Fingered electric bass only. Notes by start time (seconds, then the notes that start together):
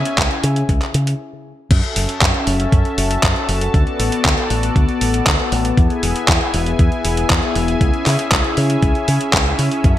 0.18 C#2
0.44 C#3
0.69 C#2
0.94 C#3
1.71 F#2
1.96 F#1
2.22 F#2
2.47 F#1
2.72 F#2
2.98 F#1
3.23 F#2
3.49 F#1
3.74 D2
3.99 A1
4.25 D2
4.50 A1
4.76 D2
5.01 A1
5.27 D2
5.52 A1
5.77 E2
6.03 E1
6.28 E2
6.54 E1
6.79 E2
7.05 E1
7.30 E2
7.55 E1
7.81 C#2
8.06 C#3
8.32 C#2
8.57 C#3
8.83 C#2
9.08 C#3
9.33 C#2
9.59 C#3
9.84 F#2